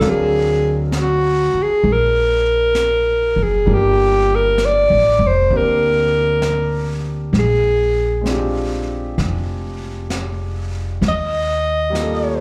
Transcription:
Already playing: A4
0.01 D2 F#3 C4 D4 A#4 F5, brush sweep, snare
0.09 G#4
0.92 brush sweep, snare, hi-hat pedal
1.01 F#4
1.54 muted upright bass stroke
1.62 G#4
1.83 A#1, brush sweep
1.92 A#4
2.75 brush sweep, snare, hi-hat pedal
3.36 F#1
3.43 G#4
3.66 G1 G3 A#3 D4 F4 A#4, brush sweep
3.73 G4
4.35 A#4
4.58 brush sweep, snare, hi-hat pedal
4.65 D5
4.90 A1
5.19 F1
5.27 C5
5.50 D2 A#3 C4 D4 G4, brush sweep
5.57 A#4
6.42 brush sweep, snare, hi-hat pedal
7.33 A#1, brush sweep, snare
7.39 G#4
8.21 G#3 C4
8.26 D4 F4, brush sweep, snare, hi-hat pedal
8.32 G4
9.18 F1, brush sweep, snare
10.10 brush sweep, snare, hi-hat pedal
11.01 D#2, brush sweep, snare
11.08 D#5
11.90 G3 A#3
11.95 F4, brush sweep, snare, hi-hat pedal
12.01 A4

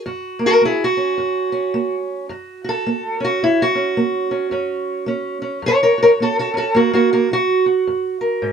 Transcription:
0.06 F#2 F#4
0.39 A#3
0.46 F#4 A#4
0.62 A#3 E4 G#4
0.84 F#4
0.97 C#4
1.18 F#2
1.52 C#4
1.74 A#3
2.29 F#2 F#4
2.64 F#4
2.69 A4
2.87 A#3
3.20 C#4
3.24 F#4
3.43 F#2 E4
3.62 F#4
3.75 C#4
3.97 A#3
4.31 C#4
4.51 F#2 C#4
5.06 A#3 C#4
5.42 C#4
5.62 F#2 A#4
5.68 C#5
5.83 A#4 C#5
5.98 F#4
6.03 A#4 C#5
6.20 A#3 F#4 A4
6.39 F#4 A4
6.54 C#4 F#4
6.58 A4
6.75 F#2 A#3 F#4
6.93 A#3 F#4
7.13 A#3 F#4
7.31 A#3 F#4
7.66 F#4
7.87 F#2
8.21 A#4
8.42 G#2

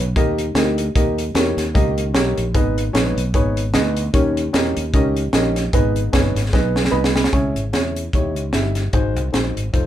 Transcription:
0.00 B1
0.16 D#2 D#3 A#3 D#4 G4 A#4 D#5, kick, closed hi-hat
0.38 closed hi-hat
0.55 D2 A#3 D#4 G4 A#4 D#5, snare, closed hi-hat
0.78 closed hi-hat
0.95 D#2 A#3 D#4 G4 A#4 D#5, kick, closed hi-hat
1.18 closed hi-hat
1.34 E2 A#3 D#4 G4 A#4 C#5, snare, closed hi-hat
1.57 D#2, snare, closed hi-hat
1.74 C#2 D#3 A#3 D#4 G4 A#4 D#5, kick, closed hi-hat
1.98 closed hi-hat
2.14 B1 A#3 D#4 G4 A#4 C#5, snare, closed hi-hat
2.38 A#1, closed hi-hat
2.54 G#1 G#2 B3 D#4 G#4 B4 D#5, kick, closed hi-hat
2.78 closed hi-hat
2.93 A#1 B3 D#4 G#4 B4 C#5, snare, closed hi-hat
3.16 B1, closed hi-hat
3.34 G#1 B3 D#4 G#4 B4 C#5, kick, closed hi-hat
3.57 closed hi-hat
3.74 D2 B3 D#4 G#4 B4 D#5, snare, closed hi-hat
3.97 closed hi-hat
4.13 D#2 D#3 C#4 D#4 G4 A#4 C#5, kick, closed hi-hat
4.37 closed hi-hat
4.53 E2 C#4 D#4 G4 A#4 D#5, snare, closed hi-hat
4.77 D#2, closed hi-hat
4.93 C#2 C#4 D#4 G4 A#4 D#5, kick, closed hi-hat
5.17 closed hi-hat
5.33 A#1 C#4 D#4 G4 A#4 D#5, snare, closed hi-hat
5.56 snare, closed hi-hat
5.73 G#1 G#2 B3 D#4 G#4 B4 D#5, kick, closed hi-hat
5.96 closed hi-hat
6.12 G1 B3 D#4 G#4 B4 C#5, kick, snare, closed hi-hat
6.35 G#1, snare, closed hi-hat
6.53 B1 B3 D#4 G#4 B4 D#5, kick, snare
6.76 snare
6.85 snare
6.91 C2 B3 D#4 G#4 B4 D#5 B5
7.04 snare
7.16 snare
7.24 snare
7.32 C#2 C#3 C#4 E4 G#4 C#5, kick, closed hi-hat
7.56 G#1, closed hi-hat
7.73 E2 C#4 E4 G#4 C#5, snare, closed hi-hat
7.96 closed hi-hat
8.13 D#2 D#3 D#4 E4 G4 C#5, kick, closed hi-hat
8.36 C#2, closed hi-hat
8.53 G1 D#4 E4 G4 E5, snare, closed hi-hat
8.75 snare, closed hi-hat
8.93 G#1 G#2 D#4 F#4 G#4 C5, kick, closed hi-hat
9.16 C2, closed hi-hat
9.32 A#1 D#4 F#4 G#4 C5, snare, closed hi-hat
9.57 G#1, closed hi-hat
9.73 F1 D#4 F4 A4 C5, kick, closed hi-hat

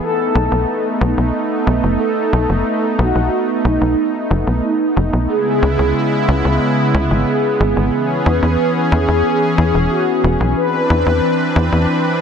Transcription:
Already playing: B3
0.02 A3 D#4 A4
0.35 B1
0.52 B1
1.01 B1
1.18 B1
1.67 B1
1.83 F#1
2.00 A4
2.33 B1
2.49 F#1
2.99 B1 F#4
3.15 B1
3.65 B1 D#4
3.81 B1
4.31 F#1
4.47 B1
4.64 D#4
4.97 F#1
5.13 B1
5.29 C#3 G#3 B3 E4 G#4
5.63 C#2
5.79 C#2
6.28 C#2
6.45 C#2
6.94 C#2
7.11 G#1
7.27 G#4
7.60 G#1
7.77 G#1
7.93 E3 C#4 G#4
8.26 E2 B4
8.43 E2
8.92 E2 G#4
9.08 E2
9.58 E2
9.75 E1
9.91 F#4
10.24 E1
10.40 B1
10.57 E3 C4 D4 B4
10.90 E2
11.06 E2
11.56 E2
11.72 E2

